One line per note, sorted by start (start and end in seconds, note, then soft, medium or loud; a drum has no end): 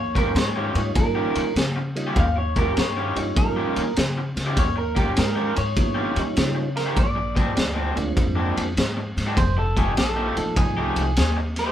0.00 0.29 D#2 loud
0.00 0.15 C#5 medium
0.15 0.29 D#3 medium
0.15 0.29 C#4 medium
0.15 0.29 F4 medium
0.15 0.29 G4 medium
0.15 0.36 A#4 medium
0.15 kick medium
0.15 ride medium
0.35 0.71 G#2 medium
0.35 0.92 C#5 medium
0.35 muted overdriven electric guitar stroke soft
0.35 snare loud
0.35 ride medium
0.56 0.75 D#3 medium
0.56 0.75 C#4 medium
0.56 0.76 F4 medium
0.56 0.75 G4 medium
0.75 0.93 G#2 medium
0.75 1.52 G3 medium
0.75 1.52 A#3 medium
0.75 1.53 C#4 medium
0.75 1.53 D#4 medium
0.75 1.53 F4 medium
0.75 muted overdriven electric guitar stroke soft
0.75 ride medium
0.95 1.31 A#2 medium
0.95 1.52 A#4 medium
0.95 kick loud
0.95 ride medium
1.15 1.39 D#3 medium
1.15 1.39 C#4 medium
1.15 1.39 F4 medium
1.15 1.39 G4 medium
1.35 1.54 A#2 medium
1.35 ride medium
1.55 2.09 C#3 medium
1.55 snare loud
1.55 ride medium
1.76 muted overdriven electric guitar stroke soft
1.96 2.14 G3 medium
1.96 2.14 A#3 medium
1.96 2.15 C#4 medium
1.96 2.15 D#4 medium
1.96 2.15 F4 medium
1.96 ride medium
2.07 2.24 D#3 medium
2.07 2.23 C#4 medium
2.07 2.23 F4 medium
2.07 2.23 G4 medium
2.16 2.69 D#2 medium
2.16 2.37 F5 loud
2.16 kick loud
2.16 ride medium
2.36 2.58 C#5 medium
2.36 muted overdriven electric guitar stroke medium
2.56 2.70 D#3 medium
2.56 2.70 C#4 medium
2.56 2.70 F4 medium
2.56 2.70 G4 loud
2.56 2.78 A#4 loud
2.56 kick medium
2.56 ride medium
2.77 3.12 G2 medium
2.77 3.37 C#5 medium
2.77 muted overdriven electric guitar stroke soft
2.77 snare loud
2.77 ride medium
2.97 3.16 D#3 medium
2.97 3.16 C#4 medium
2.97 3.17 F4 medium
2.97 3.17 G4 medium
3.15 3.34 G2 medium
3.15 3.92 G3 medium
3.15 3.93 A#3 medium
3.15 3.93 C#4 medium
3.15 3.93 D#4 medium
3.15 3.93 F4 medium
3.15 muted overdriven electric guitar stroke soft
3.15 ride medium
3.36 3.72 A#2 medium
3.36 3.94 A#4 medium
3.36 kick loud
3.36 ride medium
3.57 3.80 D#3 medium
3.57 3.80 C#4 medium
3.57 3.80 F4 medium
3.57 3.80 G4 medium
3.76 3.95 A#2 medium
3.76 ride medium
3.96 4.32 C#3 medium
3.96 snare loud
3.96 ride medium
4.18 muted overdriven electric guitar stroke medium
4.37 4.55 C#3 medium
4.37 snare soft
4.37 ride medium
4.46 4.63 D#3 medium
4.46 4.63 C#4 medium
4.46 4.63 F4 medium
4.46 4.63 G4 medium
4.57 5.10 D#2 loud
4.57 4.77 C#5 medium
4.57 kick loud
4.57 ride medium
4.76 4.96 A#4 medium
4.76 muted overdriven electric guitar stroke soft
4.95 5.09 D#3 medium
4.95 5.10 C#4 medium
4.95 5.10 F4 medium
4.95 5.10 G4 medium
4.95 5.18 G4 medium
4.95 kick medium
4.95 ride medium
5.16 5.53 G#2 medium
5.16 5.58 A#4 medium
5.16 muted overdriven electric guitar stroke soft
5.16 snare loud
5.16 ride medium
5.36 5.54 D#3 medium
5.36 5.55 C#4 medium
5.36 5.55 F4 medium
5.36 5.55 G4 medium
5.55 5.75 G#2 medium
5.55 6.76 C#5 medium
5.55 muted overdriven electric guitar stroke soft
5.55 ride medium
5.76 6.12 A#2 medium
5.76 6.13 G#3 medium
5.76 6.13 B3 medium
5.76 6.13 D4 medium
5.76 6.13 E4 medium
5.76 6.14 F#4 medium
5.76 kick loud
5.76 ride medium
5.95 6.19 D#3 medium
5.95 6.19 C#4 medium
5.95 6.19 F4 medium
5.95 6.19 G4 medium
6.16 6.35 A#2 medium
6.16 6.70 G3 medium
6.16 6.70 A#3 medium
6.16 6.70 C#4 medium
6.16 6.70 D#4 medium
6.16 6.70 F4 medium
6.16 ride medium
6.37 6.90 C#3 medium
6.37 snare loud
6.37 ride medium
6.55 muted overdriven electric guitar stroke soft
6.77 6.98 A#4 medium
6.77 snare soft
6.77 ride medium
6.86 6.97 D#3 medium
6.86 6.97 C#4 medium
6.86 6.97 F4 medium
6.86 6.97 G4 medium
6.96 7.50 A#1 loud
6.96 8.14 D5 loud
6.96 kick medium
6.96 ride medium
7.15 muted overdriven electric guitar stroke medium
7.36 7.50 A#2 medium
7.36 7.50 G#3 medium
7.36 7.50 C4 medium
7.36 7.50 D4 medium
7.36 kick medium
7.36 ride medium
7.55 7.92 D2 medium
7.55 muted overdriven electric guitar stroke soft
7.55 snare loud
7.55 ride medium
7.74 7.94 A#2 medium
7.74 7.95 G#3 medium
7.74 7.95 C4 medium
7.74 7.94 D4 medium
7.95 8.15 D2 medium
7.95 8.73 G#3 medium
7.95 8.73 A#3 medium
7.95 8.73 C4 medium
7.95 8.74 D4 medium
7.95 8.74 F4 medium
7.95 muted overdriven electric guitar stroke soft
7.95 ride medium
8.14 8.52 F2 medium
8.14 8.74 C5 loud
8.14 kick loud
8.14 ride medium
8.36 8.60 A#2 medium
8.36 8.60 G#3 medium
8.36 8.59 C4 medium
8.36 8.59 D4 medium
8.57 8.75 F2 medium
8.57 ride medium
8.77 9.12 G#2 medium
8.77 snare loud
8.77 ride medium
8.97 muted overdriven electric guitar stroke soft
9.17 9.35 G#2 medium
9.17 snare soft
9.17 ride medium
9.27 9.38 A#2 medium
9.27 9.37 G#3 medium
9.27 9.37 C4 medium
9.27 9.37 D4 medium
9.37 9.90 F1 medium
9.37 9.58 C5 loud
9.37 kick loud
9.37 ride medium
9.57 9.77 A4 medium
9.57 muted overdriven electric guitar stroke medium
9.77 9.90 F3 medium
9.77 9.90 A3 medium
9.77 9.91 D#4 medium
9.77 9.91 G4 loud
9.77 9.98 G#4 medium
9.77 kick medium
9.77 ride medium
9.97 10.32 A#1 medium
9.97 10.57 A4 medium
9.97 muted overdriven electric guitar stroke soft
9.97 snare loud
9.97 ride medium
10.16 10.35 F3 medium
10.16 10.35 A3 medium
10.16 10.35 D#4 medium
10.16 10.36 G4 medium
10.36 10.55 A#1 medium
10.36 11.13 F3 medium
10.36 11.13 A3 medium
10.36 11.13 C4 medium
10.36 11.14 D#4 medium
10.36 11.14 F4 medium
10.36 muted overdriven electric guitar stroke soft
10.36 ride medium
10.56 10.92 C2 medium
10.56 11.17 G#4 medium
10.56 kick loud
10.56 ride medium
10.77 11.01 F3 medium
10.77 11.01 A3 medium
10.77 11.00 D#4 medium
10.77 11.00 G4 loud
10.96 11.15 C2 medium
10.96 ride medium
11.17 11.70 D#2 medium
11.17 11.36 G#4 medium
11.17 snare loud
11.17 ride medium
11.37 muted overdriven electric guitar stroke soft
11.56 11.72 C5 medium
11.56 snare soft
11.56 ride medium
11.66 11.72 F3 medium
11.66 11.72 A3 medium
11.66 11.72 D#4 medium
11.66 11.72 G4 medium